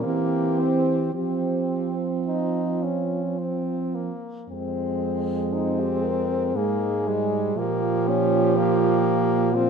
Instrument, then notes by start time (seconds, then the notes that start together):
french horn
0.03 E3 A#3 C4 G4
0.60 C4
1.14 F3 C4 G4
2.26 D#4 F4
2.83 C#4
3.38 C4
3.95 A#3
4.49 F2 G#3 C4
5.53 C4 D#4
5.80 G4
6.04 A#4
6.55 G#2 G#3 A#3 G#4
7.07 G3 G#3
7.56 A#2 F3 A#3 G4
8.08 C#4
8.56 A#3
9.54 F3 C4 F4